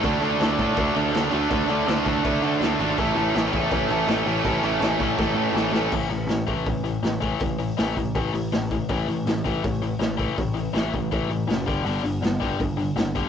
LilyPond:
<<
  \new Staff \with { instrumentName = "Distorted electric guitar" } { \time 4/4 \key a \major \tempo 4 = 162 <d a d' fis' a'>8 <d a d' fis' a'>8 <d a d' fis' a'>8 <d a d' fis' a'>8 <d a d' fis' a'>8 <d a d' fis' a'>8 <d a d' fis' a'>8 <d a d' fis' a'>8 | <d a d' fis' a'>8 <d a d' fis' a'>8 <d a d' fis' a'>8 <d a d' fis' a'>8 <d a d' fis' a'>8 <d a d' fis' a'>8 <d a d' fis' a'>8 <d a d' fis' a'>8 | <a, e a cis' e' a'>8 <a, e a cis' e' a'>8 <a, e a cis' e' a'>8 <a, e a cis' e' a'>8 <a, e a cis' e' a'>8 <a, e a cis' e' a'>8 <a, e a cis' e' a'>8 <a, e a cis' e' a'>8 | <a, e a cis' e' a'>8 <a, e a cis' e' a'>8 <a, e a cis' e' a'>8 <a, e a cis' e' a'>8 <a, e a cis' e' a'>8 <a, e a cis' e' a'>8 <a, e a cis' e' a'>8 <a, e a cis' e' a'>8 |
\key g \lydian <a, e a>8 <a, e>8 <a, e>8 <a, e a>8 <a, e>8 <a, e>8 <a, e>8 <a, e a>8 | <a, e>8 <a, e>8 <a, e a>8 <a, e>8 <a, e a>8 <a, e>8 <a, e>8 <a, e>8 | <a, e a>8 <a, e>8 <a, e>8 <a, e a>8 <a, e>8 <a, e>8 <a, e>8 <a, e a>8 | <a, e>8 <a, e>8 <a, e a>8 <a, e>8 <a, e a>8 <a, e>8 <a, e>8 <g, d g>8 |
<g, d g>8 <g, d>8 <g, d>8 <g, d g>8 <g, d>8 <g, d>8 <g, d>8 <g, d g>8 | }
  \new Staff \with { instrumentName = "Distorted electric guitar" } { \clef bass \time 4/4 \key a \major <d a d'>8 <d a d'>8 <d a d'>8 <d a d'>8 <d a d'>8 <d a d'>8 <d a d'>8 <d a d'>8 | <d a d'>8 <d a d'>8 <d a d'>8 <d a d'>8 <d a d'>8 <d a d'>8 <d a d'>8 <d a d'>8 | <a, e a>8 <a, e a>8 <a, e a>8 <a, e a>8 <a, e a>8 <a, e a>8 <a, e a>8 <a, e a>8 | <a, e a>8 <a, e a>8 <a, e a>8 <a, e a>8 <a, e a>8 <a, e a>8 <a, e a>8 <a, e a>8 |
\key g \lydian r1 | r1 | r1 | r1 |
r1 | }
  \new Staff \with { instrumentName = "Distorted electric guitar" } { \clef bass \time 4/4 \key a \major <d a d'>2.~ <d a d'>8 <d a d'>8 | <d a d'>2.~ <d a d'>8 <d a d'>8 | <a, e a>2.~ <a, e a>8 <a, e a>8 | <a, e a>2.~ <a, e a>8 <a, e a>8 |
\key g \lydian r1 | r1 | r1 | r1 |
r1 | }
  \new Staff \with { instrumentName = "Picked electric bass" } { \clef bass \time 4/4 \key a \major d,8 d,8 d,8 a,8 d,8 d,8 d,8 d,8 | d,8 d,8 d,8 d,8 d,8 d8 d,8 gis,,8 | a,,8 a,,8 a,,8 e,8 a,,8 a,,8 a,,8 a,,8 | a,,8 a,,8 a,,8 a,,8 a,,8 a,8 a,,8 a,,8 |
\key g \lydian a,,8 a,,8 a,,8 a,,8 a,,4 a,,4 | a,,4 a,,8 a,,8 a,,8 a,,8 a,,4 | a,,8 a,,8 a,,8 a,,8 a,,4 a,,4 | a,,4 a,,8 a,,8 a,,8 a,,8 fis,,8 g,,8 |
g,,8 g,,8 g,,8 g,,8 g,,4 g,,4 | }
  \new DrumStaff \with { instrumentName = "Drums" } \drummode { \time 4/4 <cymc bd>8 cymc8 <cymc sn>8 <cymc bd>8 <cymc bd>8 cymc8 <cymc sn>8 cymc8 | <cymc bd>8 cymc8 <cymc sn>8 <cymc bd>8 <cymc bd>8 cymc8 <cymc sn>8 cymc8 | <cymc bd>8 cymc8 <cymc sn>8 <cymc bd>8 <cymc bd>8 cymc8 <cymc sn>8 cymc8 | <cymc bd>8 cymc8 <cymc sn>8 <cymc bd>8 <bd sn>4 sn8 sn8 |
<cymc bd>8 hho8 <hho sn>8 <hho bd>8 <hho bd>8 hho8 <hho sn>8 <hho bd>8 | <hho bd>8 hho8 <hho sn>8 <hho bd>8 <hho bd>8 hho8 <hho sn>8 <hho bd>8 | <hho bd>8 hho8 <hho sn>8 <hho bd>8 <hho bd>8 hho8 <hho sn>8 <hho bd>8 | <hho bd>8 hho8 <hho sn>8 <hho bd>8 <hho bd>8 hho8 <hho sn>8 <hho bd>8 |
hho8 hho8 <hho sn>8 <hho bd>8 <hho bd>8 hho8 <hho sn>8 <hho bd>8 | }
>>